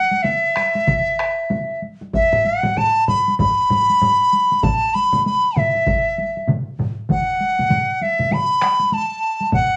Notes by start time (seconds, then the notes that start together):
Already playing: F#5
0.11 taiko high
0.22 E5, taiko mid, taiko high
0.56 taiko rim, taiko high
0.75 taiko high
0.87 taiko, taiko mid, taiko high
1.19 taiko rim
1.50 taiko mid, taiko high
1.82 taiko high
2.02 taiko high
2.14 E5, taiko, taiko high
2.33 taiko low-mid
2.45 F#5, taiko high
2.64 taiko low-mid, taiko high
2.77 A5, taiko low-mid, taiko high
3.07 B5, taiko low-mid, taiko high
3.28 taiko high
3.38 B5, taiko, taiko low-mid, taiko high
3.70 taiko low-mid, taiko high
3.90 taiko high
4.01 taiko low-mid, taiko high
4.33 taiko high
4.52 taiko high
4.63 A5, taiko, taiko low-mid, taiko mid, taiko high
4.94 B5, taiko high
5.13 taiko low-mid, taiko mid, taiko high
5.26 B5, taiko high
5.56 E5, taiko low-mid, taiko mid, taiko high
5.75 taiko high
5.87 taiko, taiko low-mid, taiko mid, taiko high
6.18 taiko high
6.37 taiko high
6.48 taiko low-mid, taiko mid, taiko high
6.79 taiko low-mid, taiko mid, taiko high
7.09 F#5, taiko, taiko low-mid, taiko mid, taiko high
7.40 taiko high
7.59 taiko low-mid, taiko mid, taiko high
7.70 taiko low-mid, taiko mid, taiko high
8.01 E5, taiko high
8.19 taiko low-mid, taiko mid, taiko high
8.31 B5, taiko low-mid, taiko mid, taiko high
8.62 taiko rim, taiko high
8.80 taiko high
8.93 A5, taiko high
9.41 taiko high
9.52 F#5, taiko, taiko low-mid, taiko mid, taiko high